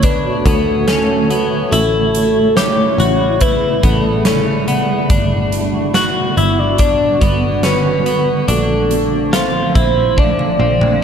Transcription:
Already playing: picked electric bass D2, ambient pad D3 A3 F#4 C#5
0.03 clean electric guitar D4, soft synth lead B4, kick, closed hi-hat
0.45 picked electric bass D2, clean electric guitar B3, soft synth lead A4, kick, closed hi-hat
0.87 clean electric guitar C#4, soft synth lead A4, snare, closed hi-hat
1.30 clean electric guitar B3, closed hi-hat
1.71 picked electric bass A1, ambient pad C#3 G3 E4, clean electric guitar E4, soft synth lead A4, closed hi-hat
2.15 closed hi-hat
2.56 clean electric guitar G4, soft synth lead C#5, snare, closed hi-hat
2.98 picked electric bass A1, clean electric guitar F#4, closed hi-hat
3.41 clean electric guitar E4, soft synth lead B4, kick, closed hi-hat
3.83 picked electric bass A1, clean electric guitar B3, soft synth lead A4, kick, closed hi-hat
4.25 clean electric guitar C#4, soft synth lead A4, snare, closed hi-hat
4.68 clean electric guitar B3, closed hi-hat
5.09 picked electric bass G1, ambient pad D3 B3 F#4, clean electric guitar D4, kick, closed hi-hat
5.52 closed hi-hat
5.94 clean electric guitar F#4, snare, closed hi-hat
6.37 picked electric bass G1, clean electric guitar E4, soft synth lead E5, closed hi-hat
6.59 soft synth lead D5
6.78 clean electric guitar D4, soft synth lead D5, kick, closed hi-hat
7.21 picked electric bass G1, clean electric guitar B3, kick, closed hi-hat
7.63 clean electric guitar C#4, soft synth lead B4, snare, closed hi-hat
8.06 clean electric guitar B3, closed hi-hat
8.48 picked electric bass A#1, ambient pad F3 A3 A#3, clean electric guitar D4, soft synth lead A4, closed hi-hat
8.91 closed hi-hat
9.33 clean electric guitar F4, soft synth lead C5, snare, closed hi-hat
9.75 picked electric bass A#1, clean electric guitar E4, kick, closed hi-hat
10.18 clean electric guitar D4, soft synth lead D5, kick, high tom
10.39 high tom
10.60 picked electric bass A#1, clean electric guitar C4
10.81 mid tom

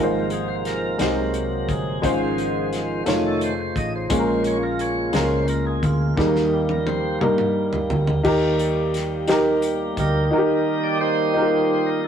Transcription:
Already playing: fingered electric bass G#1, upright piano G#2 G#3 D#4 F4, tonewheel organ C3 F3 A#3, french horn section G#3 C4 D#4 F4
0.00 tonewheel organ A#4, upright piano C5
0.30 tonewheel organ G#4, closed hi-hat
0.48 tonewheel organ C5
0.65 tonewheel organ A#4, snare, closed hi-hat
0.98 fingered electric bass C2, tonewheel organ C3 F#3 A#3, upright piano C3 G#3 D#4 F#4 C5, french horn section C4 F#4, snare, closed hi-hat
1.34 closed hi-hat
1.68 fingered electric bass G1, tonewheel organ G#4, kick, closed hi-hat
2.02 fingered electric bass G#1, upright piano G#2 G#3 C#4 F4 C5, french horn section C#3 F4 C5, tonewheel organ D#3 F3 C5, kick, closed hi-hat
2.38 closed hi-hat
2.73 snare, closed hi-hat
3.06 fingered electric bass F1, tonewheel organ D#3 A3 C#4 F4, upright piano A3 D#4 F4 C#5, french horn section A3 D#4, snare, closed hi-hat
3.26 tonewheel organ A4
3.41 tonewheel organ C5, closed hi-hat
3.60 tonewheel organ C5
3.76 fingered electric bass A1, tonewheel organ D#5, kick, closed hi-hat
3.96 tonewheel organ C5
4.10 fingered electric bass A#1, upright piano A#2 G#3 C#4 F4 G#4, tonewheel organ C#3 G#3 C#4, french horn section G#3 A#3 F4, kick, closed hi-hat
4.19 upright piano A#4
4.44 tonewheel organ C#5, closed hi-hat
4.63 tonewheel organ A#4
4.79 tonewheel organ C#5, closed hi-hat
5.13 fingered electric bass C#2, tonewheel organ C#3 G#3 C#4 C5, upright piano G#3 C#4 F4 A#4, snare, closed hi-hat
5.48 tonewheel organ A#4, closed hi-hat
5.67 tonewheel organ G#4
5.83 fingered electric bass D2, tonewheel organ F4, kick, closed hi-hat
6.16 fingered electric bass D#2, upright piano D#3 G3 A#3 D#4 G#4, french horn section G3 D#4 G4, tonewheel organ G3 A#3 D#4, kick, snare
6.25 upright piano A#4
6.36 snare
6.54 tonewheel organ G4
6.69 tonewheel organ A#4, high tom
6.87 tonewheel organ C5, high tom
7.20 fingered electric bass G2, upright piano G3 A#3 D#4 A#4, mid tom
7.38 mid tom
7.73 floor tom
7.90 fingered electric bass D2, floor tom
8.07 floor tom
8.23 fingered electric bass D#2, upright piano D#3 D#4 G4 A#4, tonewheel organ G3 A#3, french horn section G3 A#3 D#4 G4, kick, crash
8.59 closed hi-hat
8.94 snare, closed hi-hat
9.28 upright piano D#4 G4 A#4, snare, closed hi-hat
9.62 closed hi-hat
9.97 fingered electric bass D2, tonewheel organ G3 A#3 D#4 G4 A#4, kick, closed hi-hat
10.31 upright piano D#3 D#4 F#4 A#4, tonewheel organ D#3 G3 A#3
10.38 upright piano G4
10.84 tonewheel organ D5
11.01 tonewheel organ D#4 G4 C5
11.34 upright piano D#4 F4 A#4
11.42 upright piano G4
11.86 tonewheel organ A#4
12.04 tonewheel organ A4

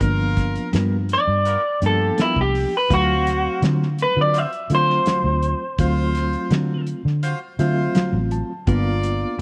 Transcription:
0.00 fingered electric bass G1, reed electric piano F3 A#3 B3 D4, horn section F4 A#4, kick, closed hi-hat
0.37 kick, snare, closed hi-hat
0.55 closed hi-hat
0.73 fingered electric bass G2, clean electric guitar G3 B3 F4 A#4, snare, closed hi-hat
1.09 closed hi-hat
1.13 clean electric guitar D5
1.27 fingered electric bass G2
1.45 horn section B3 F4 A#4, closed hi-hat
1.81 fingered electric bass G2, reed electric piano F3 A#3 B3 D4, horn section F4 G4, closed hi-hat
1.86 clean electric guitar A4
2.18 clean electric guitar G3 B3 E4 F4 A#4, snare, closed hi-hat
2.36 fingered electric bass C2, kick
2.41 clean electric guitar G4
2.55 open hi-hat
2.77 clean electric guitar B4
2.90 fingered electric bass D2, clean electric guitar D3 F#3 C4 F4 F#4, reed electric piano F#3 A3 C4 F5, horn section C5 F5, kick, closed hi-hat
3.27 snare, closed hi-hat
3.62 clean electric guitar D3 F#3 C4 F4, fingered electric bass D3, snare, closed hi-hat
3.83 snare
3.98 clean electric guitar B4, closed hi-hat
4.16 fingered electric bass D3, clean electric guitar F#3 C4 F4
4.21 clean electric guitar D5
4.34 horn section F4 F#4 C5, closed hi-hat
4.38 clean electric guitar E5
4.53 closed hi-hat
4.70 fingered electric bass D3, reed electric piano F#3 A3 C4 F4, horn section F4 C5, closed hi-hat
4.75 clean electric guitar C5
4.90 snare
5.06 clean electric guitar D3 F#3 C4 F4, snare, closed hi-hat
5.24 fingered electric bass D2
5.42 closed hi-hat
5.78 fingered electric bass D2, reed electric piano F#3 A3 C4 F4, horn section F4 C5, kick, closed hi-hat
6.15 snare, closed hi-hat
6.33 closed hi-hat
6.50 clean electric guitar D3 F#3 C4 F4, fingered electric bass D3, snare, closed hi-hat
6.87 closed hi-hat
7.05 fingered electric bass D3, snare
7.23 horn section F4 F#4 C5, closed hi-hat
7.59 fingered electric bass D3, reed electric piano F#3 A3 C4 F4 E5, horn section F4 C5, closed hi-hat
7.95 clean electric guitar D3 F#3 C4 F4, reed electric piano F5, snare, closed hi-hat
8.13 fingered electric bass A1
8.31 reed electric piano A5, closed hi-hat
8.67 fingered electric bass G1, clean electric guitar G3 B3 F4 A#4, reed electric piano A#3 B3 D4 F4, horn section F4 A#4 D5, kick, closed hi-hat
9.03 closed hi-hat

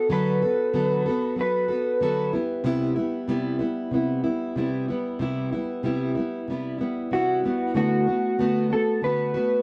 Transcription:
0.09 steel-string acoustic guitar D3 F#3 B3 F#4 A4, clean electric guitar B4
0.42 steel-string acoustic guitar B3 F#4 A4
0.74 steel-string acoustic guitar D3 F#3 B3 F#4 A4
1.06 steel-string acoustic guitar B3 F#4 A4
1.36 steel-string acoustic guitar F#3 B3 F#4 A4
1.41 clean electric guitar B4
1.68 steel-string acoustic guitar B3 F#4 A4
2.00 steel-string acoustic guitar D3 F#3 B3 F#4 A4
2.33 steel-string acoustic guitar G3 B3 E4
2.64 steel-string acoustic guitar C3 G3 B3 E4
2.96 steel-string acoustic guitar G3 B3 E4
3.28 steel-string acoustic guitar C3 G3 B3 E4
3.59 steel-string acoustic guitar G3 B3 E4
3.91 steel-string acoustic guitar C3 G3 B3 E4
4.24 steel-string acoustic guitar G3 B3 E4
4.56 steel-string acoustic guitar C3 G3 B3 E4
4.88 steel-string acoustic guitar G3 B3 E4
5.19 steel-string acoustic guitar C3 G3 B3 E4
5.52 steel-string acoustic guitar G3 B3 E4
5.83 steel-string acoustic guitar C3 G3 B3 E4
6.15 steel-string acoustic guitar B3 E4
6.19 steel-string acoustic guitar G3
6.48 steel-string acoustic guitar C3 G3 B3
6.52 steel-string acoustic guitar E4
6.78 steel-string acoustic guitar B3 E4
6.83 steel-string acoustic guitar G3
7.11 steel-string acoustic guitar C3 G3 B3 E4, clean electric guitar F#4
7.44 steel-string acoustic guitar G3 B3 E4
7.74 steel-string acoustic guitar D3 A3 B3 F#4, clean electric guitar F#4
8.07 steel-string acoustic guitar A3 B3 F#4
8.39 steel-string acoustic guitar D3 A3 B3 F#4
8.70 steel-string acoustic guitar A3 B3 F#4, clean electric guitar A4
9.02 steel-string acoustic guitar D3 A3 B3 F#4, clean electric guitar B4
9.34 steel-string acoustic guitar B3 F#4
9.38 steel-string acoustic guitar A3

